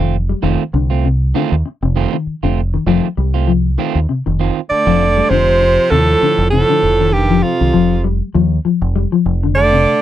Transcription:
0.00 fingered electric bass F1, clean electric guitar D#3 A3 C4 F4
0.29 clean electric guitar G3
0.42 fingered electric bass F1, clean electric guitar D#3 A3 C4 F4
0.74 fingered electric bass C2, clean electric guitar D3
0.90 clean electric guitar A3 C4 F4
1.05 clean electric guitar C3
1.34 clean electric guitar D3 D#3 A3 C4 F4
1.52 fingered electric bass D#2
1.66 muted clean electric guitar stroke
1.82 fingered electric bass F1, clean electric guitar C3
1.96 clean electric guitar D#3 A3 C4 F4
2.13 clean electric guitar D#3
2.27 muted fingered electric bass stroke
2.43 fingered electric bass F1, clean electric guitar D3 A3 C4 F4
2.74 clean electric guitar D#3
2.86 fingered electric bass F1, clean electric guitar D#3 F3 A3 C4 F4
3.17 fingered electric bass C2, clean electric guitar G3
3.34 clean electric guitar A3 C4 F4
3.48 clean electric guitar F3
3.78 clean electric guitar D#3 A3 C4 F4
3.95 fingered electric bass D#2
4.09 clean electric guitar C3
4.26 fingered electric bass F1, clean electric guitar D#3
4.40 clean electric guitar D#3 C4 F4
4.70 baritone saxophone D3, trombone A3, alto saxophone D5, muted fingered electric bass stroke
4.86 fingered electric bass F1, clean electric guitar F3 A3 C4 F4
5.17 clean electric guitar G3
5.30 fingered electric bass F1, baritone saxophone C3, clean electric guitar D3, trombone F3, alto saxophone C5
5.61 muted clean electric guitar stroke
5.91 fingered electric bass D#2, baritone saxophone A2, clean electric guitar C3, trombone F3, alto saxophone A4
6.22 clean electric guitar D3, muted fingered electric bass stroke
6.38 fingered electric bass F1
6.51 baritone saxophone A2, clean electric guitar C3, trombone F3, alto saxophone A4
6.69 clean electric guitar D3
6.83 fingered electric bass F1
7.00 clean electric guitar D#3
7.11 baritone saxophone G2, trombone D#3, alto saxophone G4
7.30 clean electric guitar F3
7.43 baritone saxophone F2, trombone C3, alto saxophone F4
7.61 fingered electric bass C2, clean electric guitar D#3
7.74 fingered electric bass F1, clean electric guitar F3
8.04 clean electric guitar G3
8.35 fingered electric bass D#2, clean electric guitar F3
8.65 clean electric guitar F3, muted fingered electric bass stroke
8.82 fingered electric bass F1
8.96 clean electric guitar G3
9.12 clean electric guitar F3
9.26 fingered electric bass F1
9.43 clean electric guitar D3
9.55 baritone saxophone D3, trombone A3, alto saxophone D5
9.73 clean electric guitar C3

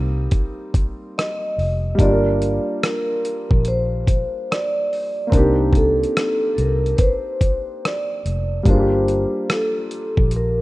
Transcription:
Already playing: fingered electric bass C2, upright piano G3 A#3 C4 D#4 A#4
0.31 kick, closed hi-hat
0.74 kick, closed hi-hat
1.18 vibraphone D#5, cross-stick, closed hi-hat
1.58 fingered electric bass F1, open hi-hat
1.95 upright piano G3 A#3, kick
1.99 fingered electric bass G1, upright piano D4 F4, vibraphone D5, closed hi-hat
2.05 upright piano G4
2.11 upright piano A#4
2.42 closed hi-hat
2.83 vibraphone A#4, cross-stick, closed hi-hat
3.25 closed hi-hat
3.51 fingered electric bass A#1, kick
3.65 vibraphone C5, closed hi-hat
4.07 kick, closed hi-hat
4.51 vibraphone D5, cross-stick, closed hi-hat
4.93 open hi-hat
5.27 upright piano A#3 C4
5.32 fingered electric bass C2, upright piano D4 D#4, vibraphone A#4, kick, closed hi-hat
5.37 upright piano G4
5.73 kick, closed hi-hat
5.77 vibraphone A4
6.03 closed hi-hat
6.17 cross-stick, closed hi-hat
6.55 fingered electric bass C2, vibraphone A4, closed hi-hat
6.61 vibraphone A#4
6.86 closed hi-hat
6.97 vibraphone B4, kick, closed hi-hat
7.01 vibraphone C5
7.41 kick, closed hi-hat
7.85 vibraphone D5, cross-stick, closed hi-hat
8.25 fingered electric bass F1, closed hi-hat
8.63 fingered electric bass G1, upright piano G3 A#3, kick, closed hi-hat
8.68 upright piano D4 F4, vibraphone C5
8.73 upright piano G#4
8.80 upright piano G4
9.08 closed hi-hat
9.50 vibraphone A4, cross-stick, closed hi-hat
9.91 closed hi-hat
10.17 fingered electric bass A#1, kick
10.31 closed hi-hat
10.36 vibraphone A#4

